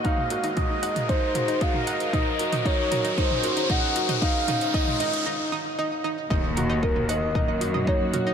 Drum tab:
HH |x-xxx-xxx-xxx-xx|x-xxx-xxx-xxx-xx|x-xxx-xx--------|--x---x---x---x-|
T2 |-o--o--o--o--o--|o--o--o--o--o--o|--o--o----------|--o--o--o--o--o-|
BD |o---o---o---o---|o---o---o---o---|o---o-----------|o---o---o---o---|